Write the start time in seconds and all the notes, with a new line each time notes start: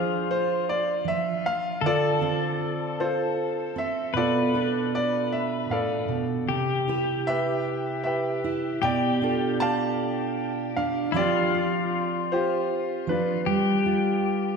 Already playing: F3 D4 F4 G#4 C5
0.31 C5
0.69 D5
1.04 F3 E5
1.46 F5
1.81 D3 A4
1.86 F4 A4 D5
2.21 C4 F4 C5
3.00 F4 A4 C5
3.76 C4 E5
4.14 B2 F4 A4 B4 D5
4.54 D4 F4 A4
4.95 D5
5.32 E5
5.69 A2 A4 D5 F5
6.08 B2
6.49 C3 G4
6.88 E4 G4 B4
7.27 G4 B4 E5
8.04 G4 B4 E5
8.44 E4
8.82 B2 G4 D5 G5
9.22 D4 F4 A4
9.60 D5 F5 A5
10.76 D4 F5
11.12 F3 C4 F4 G4
11.16 F4 G4 D5
11.54 G4
12.32 F4 G4 C5
13.07 F3 D4 F4 B4
13.46 G3 G4
13.86 F4